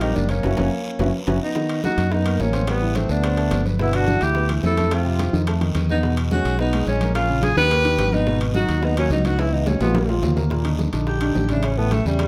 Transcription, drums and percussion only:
0.01 high bongo, high conga, high timbale
0.16 high bongo, low bongo, high conga, short guiro
0.29 high bongo, high conga, high timbale, short guiro
0.43 low bongo, high conga, high timbale, long guiro
0.57 low bongo, high conga, high timbale, long guiro
0.99 low bongo, high conga, high timbale, long guiro
1.27 low bongo, high conga, high timbale, long guiro
1.55 high bongo, high conga, long guiro
1.69 high conga, high timbale
1.84 high bongo, high conga, short guiro
1.98 high bongo, high conga, high timbale, short guiro
2.12 high bongo, high conga, long guiro
2.26 high bongo, high conga, high timbale
2.39 high bongo, low bongo, high conga, low timbale, short guiro
2.53 high bongo, high conga, high timbale, short guiro
2.67 high bongo, high conga, high timbale, long guiro
2.82 high conga
2.95 high bongo, high conga, high timbale, short guiro
3.09 high bongo, short guiro
3.24 high bongo, high conga, high timbale, long guiro
3.37 high bongo, high conga, high timbale
3.51 high bongo, low bongo, high conga, high timbale, low timbale, short guiro
3.66 high bongo, high conga, short guiro
3.79 high bongo, long guiro
3.93 high conga, high timbale
4.07 high bongo, high conga, short guiro
4.21 high bongo, high conga, high timbale, short guiro
4.35 high bongo, high conga, long guiro
4.49 high bongo, high conga, high timbale
4.63 high bongo, low bongo, high conga, low timbale, short guiro
4.77 high bongo, high conga, high timbale, short guiro
4.91 high bongo, high conga, high timbale, long guiro
5.19 high bongo, high conga, high timbale, short guiro
5.33 high bongo, high conga, short guiro
5.47 high bongo, high conga, high timbale, long guiro
5.61 high bongo, high timbale
5.75 high bongo, low bongo, high conga, high timbale, short guiro
5.89 high bongo, high conga, short guiro
6.03 high bongo, high conga, long guiro
6.17 high timbale
6.31 high bongo, high conga, short guiro
6.45 high bongo, high timbale, short guiro
6.59 high bongo, high conga, long guiro
6.73 high bongo, high conga, high timbale
6.87 high bongo, low bongo, high conga, short guiro
7.01 high bongo, high conga, high timbale, short guiro
7.15 high bongo, high conga, high timbale, long guiro
7.29 high conga
7.43 high bongo, high conga, high timbale, short guiro
7.57 high bongo, high conga, short guiro
7.71 high bongo, high conga, high timbale, long guiro
7.85 high bongo, high timbale
7.99 high bongo, low bongo, high conga, high timbale, low timbale, short guiro
8.12 high bongo, high conga, short guiro
8.27 high bongo, high conga, long guiro
8.40 high conga, high timbale
8.54 high bongo, high conga, short guiro
8.69 high bongo, high conga, high timbale, short guiro
8.83 high bongo, high conga, long guiro
8.96 high bongo, high conga, high timbale
9.10 high bongo, low bongo, high conga, short guiro
9.24 high bongo, high conga, high timbale, short guiro
9.39 high bongo, high conga, high timbale, long guiro
9.53 high conga
9.66 high bongo, high conga, low timbale, short guiro
9.81 high bongo, high conga, low timbale, short guiro
9.95 high bongo, high conga, low timbale, long guiro
10.08 high bongo, low timbale
10.23 high bongo, low bongo, low conga, low timbale, short guiro
10.36 high bongo, low conga, low timbale, short guiro
10.50 high bongo, high conga, long guiro
10.65 high timbale
10.79 high bongo, high conga, short guiro
10.93 high bongo, high conga, high timbale, short guiro
11.07 high bongo, high conga, long guiro
11.21 high bongo, high conga, high timbale
11.35 high bongo, low bongo, high conga, low timbale, short guiro
11.49 high bongo, high conga, high timbale, short guiro
11.63 high bongo, high conga, high timbale, long guiro
11.78 high conga
11.91 high bongo, high conga, high timbale, short guiro
12.06 high bongo, high conga, short guiro
12.19 high bongo, high conga, high timbale, long guiro

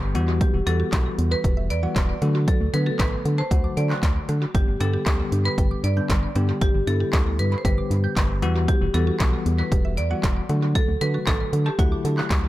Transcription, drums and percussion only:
0.15 closed hi-hat
0.41 kick, closed hi-hat
0.67 closed hi-hat
0.93 kick, snare, clap, closed hi-hat
1.19 closed hi-hat
1.44 kick, closed hi-hat
1.70 closed hi-hat
1.96 kick, snare, clap, closed hi-hat
2.22 closed hi-hat
2.48 kick, closed hi-hat
2.74 closed hi-hat
2.99 kick, snare, clap, closed hi-hat
3.25 closed hi-hat
3.51 kick, closed hi-hat
3.77 closed hi-hat
3.90 clap
4.03 kick, snare, clap, closed hi-hat
4.29 closed hi-hat
4.55 kick, closed hi-hat
4.81 closed hi-hat
5.06 kick, snare, clap, closed hi-hat
5.32 closed hi-hat
5.58 kick, closed hi-hat
5.84 closed hi-hat
6.10 kick, snare, clap, closed hi-hat
6.36 closed hi-hat
6.61 kick, closed hi-hat
6.87 closed hi-hat
7.13 kick, snare, clap, closed hi-hat
7.39 closed hi-hat
7.65 kick, closed hi-hat
7.91 closed hi-hat
8.17 kick, snare, clap, closed hi-hat
8.42 closed hi-hat
8.68 kick, closed hi-hat
8.94 closed hi-hat
9.20 kick, snare, clap, closed hi-hat
9.46 closed hi-hat
9.72 kick, closed hi-hat
9.98 closed hi-hat
10.24 kick, snare, clap, closed hi-hat
10.49 closed hi-hat
10.75 kick, closed hi-hat
11.01 closed hi-hat
11.27 kick, snare, clap, closed hi-hat
11.53 closed hi-hat
11.79 kick, closed hi-hat
12.05 closed hi-hat
12.18 clap
12.31 kick, snare, clap, closed hi-hat

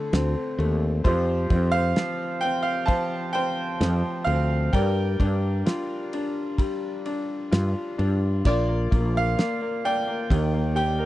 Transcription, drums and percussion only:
0.13 snare, ride
0.60 ride
1.05 kick, ride
1.50 kick, ride
1.96 snare, ride
2.43 ride
2.88 kick, ride
3.34 ride
3.81 snare, ride
4.27 ride
4.73 kick, ride
5.20 kick, ride
5.66 snare, ride
6.13 ride
6.58 kick, ride
7.06 ride
7.52 snare, ride
7.99 ride
8.45 kick, crash
8.92 kick, ride
9.39 snare, ride
9.85 ride
10.30 kick, ride
10.77 ride

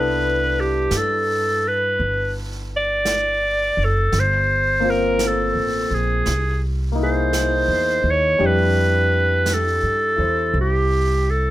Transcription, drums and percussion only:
0.91 brush sweep, snare, hi-hat pedal
1.99 brush sweep
3.05 brush sweep, snare, hi-hat pedal
4.12 brush sweep, snare
5.19 brush sweep, snare, hi-hat pedal
6.26 brush sweep, snare
7.33 brush sweep, snare, hi-hat pedal
8.39 brush sweep
9.46 brush sweep, snare, hi-hat pedal
10.53 brush sweep

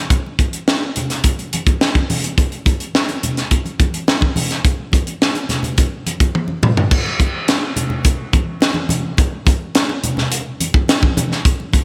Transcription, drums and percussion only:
0.10 kick, closed hi-hat, muted conga
0.26 muted conga
0.39 kick, closed hi-hat, high conga
0.53 closed hi-hat
0.68 snare, muted conga
0.96 closed hi-hat, low conga
1.10 snare, closed hi-hat
1.24 kick, closed hi-hat, muted conga
1.39 closed hi-hat, muted conga
1.53 closed hi-hat, high conga
1.67 kick, closed hi-hat
1.81 snare, muted conga
1.95 kick, closed hi-hat, high conga
2.10 open hi-hat, high conga, low conga
2.24 closed hi-hat
2.38 kick, closed hi-hat, muted conga
2.52 closed hi-hat
2.66 kick, closed hi-hat, high conga
2.80 closed hi-hat
2.95 snare
3.08 closed hi-hat, muted conga
3.23 closed hi-hat, low conga
3.37 snare, closed hi-hat
3.51 kick, closed hi-hat, muted conga
3.65 closed hi-hat, muted conga
3.80 kick, closed hi-hat, high conga
3.94 closed hi-hat
4.08 snare, muted conga
4.21 kick, muted conga, high conga
4.36 open hi-hat, high conga, low conga
4.51 snare, closed hi-hat
4.65 kick, closed hi-hat
4.92 kick, closed hi-hat, high conga
5.07 closed hi-hat
5.22 snare, muted conga
5.35 closed hi-hat, muted conga
5.49 snare, closed hi-hat, low conga
5.63 closed hi-hat, low conga
5.77 kick, closed hi-hat, muted conga
6.06 closed hi-hat, high conga
6.20 kick, closed hi-hat
6.35 high tom
6.48 muted conga, high conga
6.63 mid tom, high conga, low conga
6.77 floor tom
6.91 kick, crash, muted conga
7.06 muted conga
7.19 kick, closed hi-hat, high conga
7.48 snare, closed hi-hat, muted conga
7.76 closed hi-hat, low conga
7.90 low conga
8.04 kick, closed hi-hat, muted conga
8.33 kick, closed hi-hat, high conga
8.60 snare, closed hi-hat, muted conga
8.74 muted conga, high conga
8.89 closed hi-hat, high conga, low conga
9.17 kick, closed hi-hat, muted conga
9.46 kick, closed hi-hat, high conga
9.75 snare, closed hi-hat, muted conga
9.89 muted conga
10.04 closed hi-hat, low conga
10.17 snare, low conga
10.31 closed hi-hat, muted conga
10.60 closed hi-hat, high conga
10.74 kick
10.88 snare, closed hi-hat, muted conga
11.02 kick, muted conga, high conga
11.17 closed hi-hat, high conga, low conga
11.32 snare
11.45 kick, closed hi-hat, muted conga
11.60 muted conga
11.73 kick, closed hi-hat, high conga

